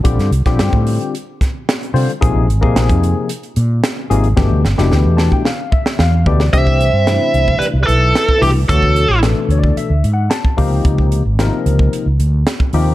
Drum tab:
HH |xxxxx-oxx-x-xxox|x-x-xxx-xxx-x-xx|----------------|x-x-x-x-x-x-x-o-|
SD |-o-oo-----o-o---|----o-------o---|o-ooo-o-o--oo--o|----o-------o---|
BD |o--o-o----o-----|o--o-o----------|o------o--o---o-|oo-----o-----o--|

HH |x-x-x-x-x-x-x-o-|x-x-x-x-x-x-x-o-|
SD |----o-------o---|----o-------o---|
BD |oo-----o-----oo-|oo-----o-----o--|